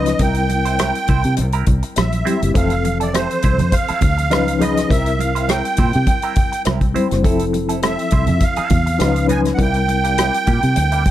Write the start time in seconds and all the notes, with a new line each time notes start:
Already playing: C#2 F3 C#4 D#4 B4 D#5
0.06 cross-stick, closed hi-hat
0.19 C2 G3 C4 E4 A#4 G5, kick, closed hi-hat
0.34 closed hi-hat
0.49 muted clean electric guitar stroke, closed hi-hat, muted conga
0.65 C4 E4 C5, closed hi-hat
0.78 C4 E4 A#4, cross-stick, closed hi-hat, high conga
0.95 muted clean electric guitar stroke, closed hi-hat
1.08 C2 C4 E4 C5, kick, closed hi-hat, low conga
1.24 C3, muted clean electric guitar stroke, closed hi-hat
1.37 C2, muted clean electric guitar stroke, closed hi-hat, muted conga
1.52 C4 E4 A#4, closed hi-hat
1.66 C2, muted clean electric guitar stroke, kick, closed hi-hat, muted conga
1.83 muted clean electric guitar stroke, closed hi-hat
1.96 A#1 E5, muted clean electric guitar stroke, cross-stick, closed hi-hat, high conga
2.12 closed hi-hat
2.25 G3 C4 E4 G4 C5, closed hi-hat, high conga
2.41 F#1, muted clean electric guitar stroke, closed hi-hat
2.54 F1 E3 F3 C4 E4 A4 F5, kick, closed hi-hat
2.70 closed hi-hat
2.85 muted clean electric guitar stroke, closed hi-hat, muted conga
3.00 C4 E4 A4 D5, closed hi-hat
3.13 C4 E4 A4 C5, cross-stick, closed hi-hat, high conga
3.30 muted clean electric guitar stroke, closed hi-hat
3.42 C2 C4 E4 C5, kick, closed hi-hat
3.59 F2, muted clean electric guitar stroke, closed hi-hat, low conga
3.72 F5, muted clean electric guitar stroke, kick, closed hi-hat, muted conga
3.88 C4 E4 A4, muted fingered electric bass stroke, closed hi-hat
4.01 D2, kick, closed hi-hat, muted conga, low conga
4.18 muted clean electric guitar stroke, closed hi-hat
4.31 C#2 F3 C#4 D#4 F4 B4, cross-stick, closed hi-hat, high conga
4.47 muted clean electric guitar stroke, closed hi-hat
4.59 F3 C#4 D#4 F4 G#4 B4 D#5, closed hi-hat, high conga
4.76 muted clean electric guitar stroke, cross-stick, closed hi-hat
4.89 C2 G3 C4 E4 A#4 E5, kick, closed hi-hat
5.06 closed hi-hat
5.19 F5, muted clean electric guitar stroke, closed hi-hat, muted conga
5.35 C4 E4 C5, closed hi-hat
5.48 C4 E4 A#4 G5, cross-stick, closed hi-hat, high conga
5.65 muted clean electric guitar stroke, closed hi-hat
5.77 A#2 C4 E4 C5, kick, closed hi-hat, low conga
5.93 C3, muted clean electric guitar stroke, closed hi-hat
6.07 muted clean electric guitar stroke, kick, closed hi-hat, muted conga
6.22 C4 E4 A#4, closed hi-hat
6.36 muted clean electric guitar stroke, kick, closed hi-hat, muted conga
6.52 muted clean electric guitar stroke, closed hi-hat
6.65 C2 C4 E4 A#4, cross-stick, closed hi-hat, high conga
6.81 muted clean electric guitar stroke, kick, closed hi-hat
6.93 G3 C4 E4 C5, closed hi-hat, high conga
7.11 F#1, muted clean electric guitar stroke, cross-stick, closed hi-hat
7.23 F1 F3 C4 E4 A4, kick, closed hi-hat
7.39 closed hi-hat
7.53 muted clean electric guitar stroke, closed hi-hat, muted conga
7.69 C4 E4 A4, closed hi-hat
7.83 C4 E4 A4 E5, cross-stick, closed hi-hat, high conga
7.98 muted clean electric guitar stroke, closed hi-hat
8.11 C2 C4 E4 C5, kick, closed hi-hat
8.27 F2, muted clean electric guitar stroke, closed hi-hat, low conga
8.40 F5, muted clean electric guitar stroke, kick, closed hi-hat, muted conga
8.56 C4 E4 A4, muted fingered electric bass stroke, closed hi-hat
8.70 E2, kick, closed hi-hat, muted conga, low conga
8.86 muted clean electric guitar stroke, closed hi-hat
8.98 C#2 F3 B3 C#4 D#4 B4, cross-stick, closed hi-hat, high conga
9.15 muted clean electric guitar stroke, closed hi-hat
9.27 F3 B3 C#4 D#4 B4, closed hi-hat, high conga
9.31 G#5
9.45 muted clean electric guitar stroke, cross-stick, closed hi-hat
9.54 G3 C4 F#5
9.58 C2 A#3 E4 A#4 G5, kick, closed hi-hat, muted conga
9.74 closed hi-hat
9.88 muted clean electric guitar stroke, closed hi-hat, muted conga
10.04 G3 A#3 G4, closed hi-hat
10.18 G3 A#3 E4, cross-stick, closed hi-hat, high conga
10.33 muted clean electric guitar stroke, closed hi-hat
10.47 A#2 G3 A#3 G4, kick, closed hi-hat, low conga
10.63 C3, muted clean electric guitar stroke, closed hi-hat
10.76 D2, muted clean electric guitar stroke, closed hi-hat, muted conga
10.92 G3 A#3 E4, closed hi-hat
11.05 C2, kick, closed hi-hat, muted conga